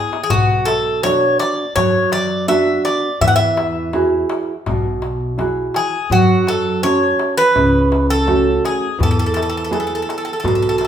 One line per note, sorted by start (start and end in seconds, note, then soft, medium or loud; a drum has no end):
0.00 0.16 B3 soft
0.00 0.16 E4 soft
0.00 0.16 G#4 medium
0.00 0.22 G#4 medium
0.13 darbuka tek medium
0.23 0.31 G#4 medium
0.30 1.32 B1 medium
0.30 1.02 B2 medium
0.30 0.68 F#4 medium
0.30 darbuka dum loud
0.49 darbuka tek soft
0.65 1.00 A4 medium
0.65 darbuka tek medium
0.86 darbuka tek soft
1.03 1.62 B3 soft
1.03 1.62 D4 soft
1.03 1.62 F#4 medium
1.03 1.39 C#5 loud
1.03 darbuka tek medium
1.39 1.74 D5 medium
1.39 darbuka tek medium
1.76 2.78 F#2 medium
1.76 2.47 F#3 medium
1.76 2.12 C#5 loud
1.76 darbuka tek medium
1.76 darbuka dum medium
1.95 darbuka tek soft
2.12 2.48 D5 medium
2.12 darbuka tek medium
2.48 3.06 B3 soft
2.48 3.06 D4 soft
2.48 3.06 F#4 medium
2.48 2.82 E5 loud
2.48 darbuka tek medium
2.85 3.19 D5 medium
2.85 darbuka tek medium
3.21 4.23 E2 loud
3.21 3.92 E3 medium
3.21 3.27 E5 loud
3.21 darbuka dum loud
3.28 3.35 F#5 medium
3.36 5.71 E5 loud
3.40 darbuka tek soft
3.57 darbuka tek medium
3.76 darbuka tek soft
3.93 4.52 E4 medium
3.93 4.52 F#4 soft
3.93 4.52 G#4 medium
3.93 darbuka tek medium
4.30 darbuka tek medium
4.66 5.68 B1 medium
4.66 5.37 B2 medium
4.66 darbuka tek medium
4.66 darbuka dum medium
4.85 darbuka tek soft
5.02 darbuka tek medium
5.38 5.96 E4 soft
5.38 5.96 F#4 soft
5.38 5.97 G#4 medium
5.38 darbuka tek medium
5.74 6.09 G#4 medium
5.74 darbuka tek medium
6.10 7.12 F#2 loud
6.10 6.81 F#3 medium
6.10 6.49 F#4 medium
6.10 darbuka dum medium
6.29 darbuka tek soft
6.47 6.82 A4 medium
6.47 darbuka tek medium
6.66 darbuka tek soft
6.83 7.41 C#4 medium
6.83 7.42 F#4 soft
6.83 7.42 A4 medium
6.83 7.34 C#5 medium
6.83 darbuka tek medium
7.19 darbuka tek medium
7.37 8.06 B4 medium
7.55 8.57 C#2 medium
7.55 8.26 C#3 medium
7.55 darbuka tek medium
7.55 darbuka dum medium
7.74 darbuka tek soft
7.92 darbuka tek medium
8.10 8.65 A4 medium
8.26 8.86 A3 medium
8.26 8.85 C#4 soft
8.26 8.85 F#4 soft
8.26 darbuka tek medium
8.65 8.98 G#4 medium
8.65 darbuka tek medium
8.99 10.01 E2 medium
8.99 9.69 E3 medium
8.99 darbuka dum medium
9.03 9.09 A4 medium
9.11 9.16 A4 medium
9.19 9.25 A4 medium
9.19 darbuka tek soft
9.26 9.32 A4 medium
9.34 9.39 A4 medium
9.34 darbuka tek medium
9.42 9.47 A4 medium
9.50 9.55 A4 medium
9.57 9.62 A4 medium
9.64 9.70 A4 medium
9.71 10.29 B3 medium
9.71 10.29 E4 soft
9.71 10.29 G#4 medium
9.71 9.78 A4 soft
9.71 darbuka tek medium
9.80 9.85 A4 medium
9.87 9.92 A4 soft
9.95 10.00 A4 medium
10.02 10.08 A4 soft
10.09 10.15 A4 medium
10.09 darbuka tek medium
10.18 10.23 A4 soft
10.25 10.30 A4 medium
10.33 10.38 A4 soft
10.40 10.88 B2 medium
10.40 10.45 A4 medium
10.44 10.88 B1 medium
10.44 10.53 A4 soft
10.44 darbuka tek medium
10.44 darbuka dum medium
10.55 10.61 A4 medium
10.62 10.68 A4 medium
10.62 darbuka tek soft
10.69 10.75 A4 medium
10.78 10.83 A4 medium
10.78 darbuka tek medium